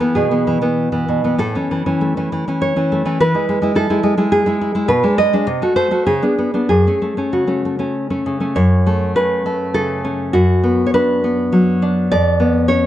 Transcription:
Already playing: A4
0.00 E3 B3
0.15 B2 G#4
0.31 E3 B3
0.47 E3
0.62 E3 B3
0.92 E3 B3
1.08 B2
1.24 E3 B3
1.38 A2 A4
1.55 E3 C#4
1.71 E3
1.86 E3 C#4
2.01 A3
2.17 E3 C#4
2.32 E3
2.48 E3 C#4
2.62 C#5
2.76 E3 C#4
2.92 A3
3.05 E3 C#4
3.20 E3 B4
3.34 G#3 E4
3.49 G#3
3.62 G#3 E4
3.75 E4 A4
3.90 G#3 E4
4.03 G#3
4.17 G#3 E4
4.32 G#4
4.46 G#3 E4
4.61 E4
4.75 G#3 E4
4.88 B2 B4
5.03 G#3 D4
5.18 G#3 D#5
5.33 G#3 D4
5.47 C3
5.62 A3 F#4
5.76 A3 C5
5.91 A3 F#4
6.07 C#3 G#4
6.22 B3 D4
6.38 B3
6.54 B3 D4
6.69 F#2 G#4
6.87 A3 C#4
7.02 A3
7.17 A3 C#4
7.33 C#3 F#4
7.47 A3 C#4
7.65 A3
7.79 A3 C#4
8.10 A3 C#4
8.26 C#3
8.40 A3 C#4
8.56 F#2 C#5
8.87 A3
9.16 C#4 B4
9.46 A3
9.74 C#3 A4
10.05 C#4
10.33 F#2 F#4
10.64 B3
10.87 C#5
10.94 D4 B4
11.24 B3
11.52 F#3
11.82 D4
12.12 F2 D5
12.40 B3
12.68 C#4 C#5

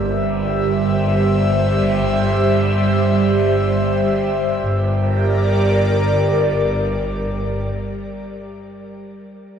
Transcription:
Already playing: G1 G3 G4 A#4 C5 D5 E5
4.60 G1 G3 G4
4.78 A#4
4.93 D5

